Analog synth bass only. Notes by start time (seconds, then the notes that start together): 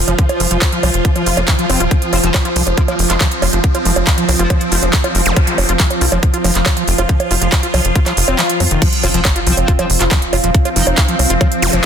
0.08 F1
0.40 F1
0.51 F1
0.83 C2
0.94 F1
1.26 F1
1.37 F1
1.70 F1
1.80 D#1
2.13 F1
2.23 F1
2.56 C2
2.67 F1
2.99 F1
3.10 F1
3.42 F1
3.53 F1
3.85 F1
3.96 F1
4.29 C2
4.39 F1
4.72 F1
4.83 F1
5.15 F1
5.26 F1
5.58 F1
5.69 F1
6.01 C2
6.12 F1
6.44 F1
6.55 F1
6.88 F1
6.98 F1
7.31 F1
7.42 F1
7.74 C2
7.85 F1
8.17 F1
8.28 F1
8.60 F2
8.71 F1
9.03 F1
9.14 F1
9.47 C2
9.57 F1
9.90 F1
10.01 F1
10.33 F1
10.44 D#1
10.76 F1
10.87 F1
11.19 C2
11.30 F1
11.62 F1
11.73 F1